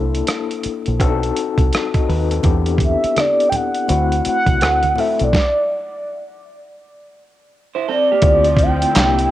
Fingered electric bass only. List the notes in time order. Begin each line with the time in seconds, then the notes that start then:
Already playing: C2
0.66 muted fingered electric bass stroke
0.88 A#1
1.00 B1
1.58 C2
2.09 D#2
2.45 E2
3.04 muted fingered electric bass stroke
3.90 D2
4.26 muted fingered electric bass stroke
4.47 C2
4.62 D2
5.21 B1
8.23 D2
8.96 C2